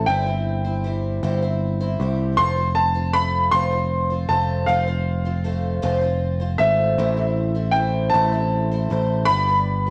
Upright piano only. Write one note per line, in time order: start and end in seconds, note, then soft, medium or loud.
0.00 0.11 A5 medium
0.06 0.89 G5 medium
2.37 2.77 C6 medium
2.75 3.15 A5 medium
3.13 3.49 B5 medium
3.51 4.31 C6 medium
4.29 4.68 A5 medium
4.66 5.78 F5 medium
6.58 7.77 E5 medium
7.71 8.12 G5 medium
8.10 9.30 A5 medium
9.25 9.90 B5 medium